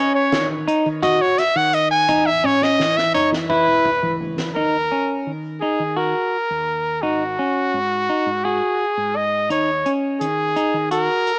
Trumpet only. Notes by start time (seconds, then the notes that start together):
Already playing: C#5
0.15 C#5
1.03 D#5
1.21 C#5
1.39 E5
1.57 F#5
1.74 D#5
1.91 G#5
2.26 E5
2.45 C#5
2.63 D#5
2.97 E5
3.14 C#5
3.50 B4
4.55 A#4
5.61 G#4
5.97 A#4
7.02 F#4
8.44 G#4
9.16 D#5
9.51 C#5
10.20 G#4
10.92 A#4